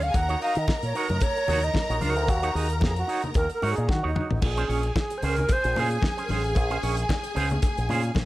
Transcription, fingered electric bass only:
0.03 0.12 D2 medium
0.14 0.35 D#2 loud
0.57 0.65 D#3 loud
0.83 0.92 A#2 medium
1.10 1.19 F#2 medium
1.48 1.69 D#2 medium
1.90 1.99 A#1 medium
2.01 2.16 C#2 loud
2.16 2.28 D2 medium
2.28 2.49 D#2 loud
2.55 2.82 D#2 loud
2.82 3.02 F2 loud
3.35 3.47 D#2 loud
3.63 3.74 G#2 medium
3.78 3.87 A#2 loud
3.89 4.00 D#3 loud
4.04 4.13 D#2 medium
4.31 4.40 A1 loud
4.43 4.63 A#1 loud
4.69 4.89 A#1 loud
5.23 5.43 C#2 loud
5.65 5.73 A#1 loud
5.76 5.96 A#2 loud
6.30 6.56 A1 medium
6.56 6.76 A#1 loud
6.83 7.03 A#1 loud
7.36 7.57 C#2 loud
7.78 7.87 A#1 loud
7.90 8.10 A#2 loud
8.16 8.25 A#1 loud

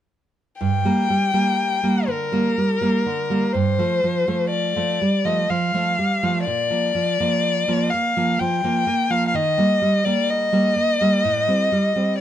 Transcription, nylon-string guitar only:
0.61 0.85 G2 soft
0.85 1.08 G3 soft
0.85 1.08 A#3 soft
1.10 1.32 G3 soft
1.34 1.80 G3 soft
1.34 1.80 A#3 soft
1.83 2.06 G3 soft
1.83 2.06 A#3 soft
2.08 2.47 D3 soft
2.32 2.54 G3 soft
2.32 2.55 A#3 soft
2.58 2.80 G3 soft
2.81 3.03 G3 soft
2.81 3.04 A#3 soft
3.06 3.45 D3 soft
3.30 3.52 G3 soft
3.30 3.53 A#3 soft
3.54 3.78 G2 soft
3.79 4.01 F3 soft
3.79 4.01 A3 soft
4.03 4.27 F3 soft
4.28 4.73 F3 soft
4.28 4.73 A3 soft
4.76 4.99 F3 soft
4.76 4.99 A3 soft
5.01 5.41 G3 soft
5.25 5.47 F3 soft
5.25 5.48 A3 soft
5.50 5.73 F3 soft
5.74 5.96 F3 soft
5.74 5.96 A3 soft
5.99 6.37 G3 soft
6.23 6.44 F3 soft
6.23 6.44 A3 soft
6.47 6.70 A#2 soft
6.70 6.92 F3 soft
6.70 6.92 A#3 soft
6.95 7.19 F3 soft
7.20 7.64 F3 soft
7.20 7.64 A#3 soft
7.68 7.90 F3 soft
7.68 7.90 A#3 soft
7.94 8.16 A#3 soft
8.17 8.38 F3 soft
8.17 8.38 A#3 soft
8.41 8.63 F3 soft
8.64 8.85 F3 soft
8.64 8.86 A#3 soft
8.87 9.09 A#3 soft
9.10 9.32 F3 soft
9.10 9.32 A#3 soft
9.34 9.58 D#3 soft
9.58 9.79 G3 soft
9.58 9.80 A#3 soft
9.81 10.04 G3 soft
10.06 10.49 G3 soft
10.06 10.49 A#3 soft
10.52 10.74 G3 soft
10.52 10.74 A#3 soft
10.76 11.00 A#3 soft
11.01 11.22 G3 soft
11.01 11.22 A#3 soft
11.24 11.47 A2 soft
11.48 11.69 G3 soft
11.48 11.70 C4 soft
11.72 11.95 G3 soft
11.96 12.17 G3 soft
11.96 12.17 C4 soft

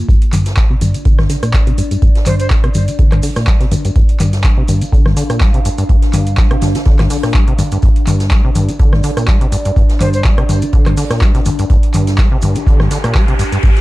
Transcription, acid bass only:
0.09 0.16 G2 medium
0.33 0.59 G2 medium
0.57 0.68 G3 medium
0.70 0.76 C3 medium
0.81 0.96 G2 medium
0.94 0.98 F3 medium
1.05 1.20 D3 medium
1.19 1.28 G2 loud
1.30 1.37 D3 medium
1.43 1.55 A#2 medium
1.54 1.65 G3 medium
1.67 1.73 C3 medium
1.78 1.82 G2 medium
1.91 1.97 G2 medium
2.02 2.09 G2 medium
2.26 2.52 G2 medium
2.51 2.61 G3 medium
2.64 2.70 C3 medium
2.75 2.89 G2 medium
2.88 2.92 F3 medium
2.99 3.14 D3 medium
3.12 3.21 G2 loud
3.23 3.30 D3 medium
3.36 3.49 A#2 medium
3.47 3.58 G3 medium
3.60 3.67 C3 medium
3.72 3.76 G2 medium
3.85 3.91 G2 medium
3.96 4.03 G2 medium
4.20 4.46 G2 medium
4.44 4.55 G3 medium
4.57 4.63 C3 medium
4.68 4.83 G2 medium
4.82 4.85 F3 medium
4.93 5.07 D3 medium
5.06 5.15 G2 loud
5.17 5.24 D3 medium
5.30 5.42 A#2 medium
5.41 5.52 G3 medium
5.54 5.60 C3 medium
5.65 5.69 G2 medium
5.78 5.84 G2 medium
5.89 5.97 G2 medium
6.14 6.39 G2 medium
6.38 6.49 G3 medium
6.51 6.57 C3 medium
6.62 6.77 G2 medium
6.75 6.79 F3 medium
6.86 7.01 D3 medium
6.99 7.08 G2 loud
7.10 7.18 D3 medium
7.23 7.36 A#2 medium
7.34 7.45 G3 medium
7.48 7.54 C3 medium
7.59 7.63 G2 medium
7.72 7.78 G2 medium
7.83 7.90 G2 medium
8.07 8.33 G2 medium
8.31 8.42 G3 medium
8.44 8.50 C3 medium
8.55 8.70 G2 medium
8.69 8.72 F3 medium
8.80 8.94 D3 medium
8.93 9.02 G2 loud
9.04 9.11 D3 medium
9.17 9.30 A#2 medium
9.28 9.39 G3 medium
9.41 9.47 C3 medium
9.52 9.57 G2 medium
9.65 9.71 G2 medium
9.76 9.84 G2 medium
10.01 10.26 G2 medium
10.25 10.36 G3 medium
10.38 10.44 C3 medium
10.49 10.64 G2 medium
10.62 10.66 F3 medium
10.73 10.88 D3 medium
10.86 10.95 G2 loud
10.97 11.05 D3 medium
11.11 11.23 A#2 medium
11.22 11.32 G3 medium
11.35 11.41 C3 medium
11.46 11.50 G2 medium
11.59 11.65 G2 medium
11.70 11.77 G2 medium
11.94 12.20 G2 medium
12.18 12.29 G3 medium
12.32 12.38 C3 medium
12.43 12.57 G2 medium
12.56 12.59 F3 medium
12.67 12.81 D3 medium
12.80 12.89 G2 loud
12.91 12.98 D3 medium
13.04 13.17 A#2 medium
13.15 13.26 G3 medium
13.28 13.34 C3 medium
13.39 13.44 G2 medium
13.52 13.59 G2 medium
13.64 13.71 G2 medium

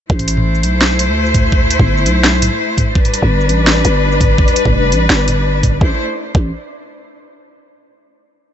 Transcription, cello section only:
0.10 2.93 A3 medium
0.10 2.93 E4 medium
0.10 2.93 C5 medium
2.95 5.78 G3 medium
2.95 5.78 D4 medium
2.95 5.78 B4 medium
5.81 5.98 A3 medium
5.81 5.98 E4 medium
5.81 5.98 C5 medium

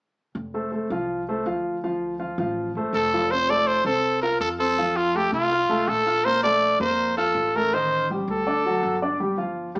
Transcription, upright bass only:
0.35 0.86 F1 medium
0.90 1.42 C2 medium
1.46 2.32 D2 medium
2.38 2.72 A1 medium
2.75 2.92 G1 medium
2.93 3.79 F1 medium
3.85 4.36 C2 medium
4.40 5.27 F2 medium
5.32 5.67 C2 medium
5.70 5.87 C2 medium
5.88 6.74 A#1 medium
6.80 7.31 F2 medium
7.35 8.22 A1 medium
8.28 8.79 D2 medium
8.83 9.69 G1 medium
9.75 9.79 D2 medium

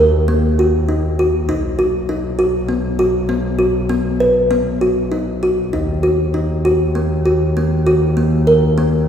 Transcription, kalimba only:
0.00 0.17 A#4 medium
0.28 0.47 A#3 medium
0.59 0.77 F#4 medium
0.89 1.07 D#4 medium
1.19 1.37 F#4 medium
1.49 1.67 D#4 medium
1.79 1.97 F#4 medium
2.09 2.27 D#4 medium
2.39 2.57 F#4 medium
2.69 2.87 B3 medium
2.99 3.17 F#4 medium
3.29 3.47 B3 medium
3.59 3.77 F#4 medium
3.89 4.08 B3 medium
4.20 4.39 B4 medium
4.51 4.69 B3 medium
4.81 5.00 F#4 medium
5.12 5.30 D#4 medium
5.43 5.61 F#4 medium
5.73 5.92 D#4 medium
6.03 6.22 F#4 medium
6.34 6.53 D#4 medium
6.65 6.84 F#4 medium
6.95 7.14 A#3 medium
7.25 7.44 F#4 medium
7.57 7.75 A#3 medium
7.87 8.05 F#4 medium
8.17 8.35 A#3 medium
8.47 8.66 A#4 medium
8.78 8.96 A#3 medium

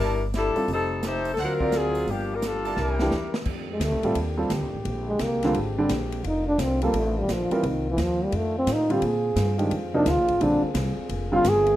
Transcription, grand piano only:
0.56 0.67 G3 medium
0.56 0.67 C4 medium
0.56 0.67 F4 medium
0.56 0.67 A4 medium
1.60 2.05 C4 medium
1.60 2.05 F4 medium
1.60 2.05 A#4 medium
1.60 2.05 D5 medium
3.01 3.11 E3 medium
3.01 3.11 A3 medium
3.01 3.12 D4 medium
3.01 3.12 G4 medium
4.04 4.15 G3 medium
4.04 4.15 C4 medium
4.04 4.15 F4 medium
4.04 4.15 A4 medium
4.37 4.49 G3 medium
4.37 4.49 C4 medium
4.37 4.49 F4 medium
4.37 4.49 A4 medium
5.44 5.55 D3 medium
5.44 5.54 G3 medium
5.44 5.55 C4 medium
5.44 5.55 F4 medium
5.78 5.89 D3 medium
5.78 5.89 G3 medium
5.78 5.89 C4 medium
5.78 5.89 D4 medium
6.83 6.93 G3 medium
6.83 6.93 C4 medium
6.83 6.94 F4 medium
6.83 6.94 A4 medium
7.51 7.62 G3 medium
7.51 7.62 C4 medium
7.51 7.62 F4 medium
7.51 7.63 A#4 medium
8.90 9.01 D3 medium
8.90 9.01 G3 medium
8.90 9.01 C4 medium
8.90 9.01 F4 medium
9.58 9.70 D#3 medium
9.58 9.70 G#3 medium
9.58 9.70 D4 medium
9.58 9.70 G4 medium
9.94 10.05 C3 medium
9.94 10.05 F3 medium
9.94 10.05 A#3 medium
9.94 10.05 D#4 medium
10.41 10.62 D3 medium
10.41 10.61 G3 medium
10.41 10.62 C4 medium
10.41 10.61 F4 medium
11.32 11.43 D3 medium
11.32 11.43 G3 medium
11.32 11.44 C4 medium
11.32 11.44 F4 medium

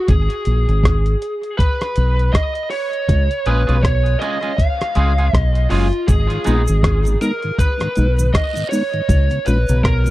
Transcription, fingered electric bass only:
0.09 0.28 G#1 loud
0.47 0.65 A#1 medium
0.69 1.14 G#1 loud
1.97 2.29 B1 medium
3.09 3.28 C#2 loud
3.46 3.65 A#1 medium
3.69 4.15 B1 medium
4.97 5.29 C#2 medium
5.34 5.66 B1 medium
5.71 5.90 F#1 medium
6.09 6.28 G#1 loud
6.47 6.66 A#1 medium
6.69 7.15 G#1 loud
7.98 8.30 B1 medium
9.09 9.28 C#2 loud
9.47 9.66 A#1 medium
9.69 10.11 B1 medium

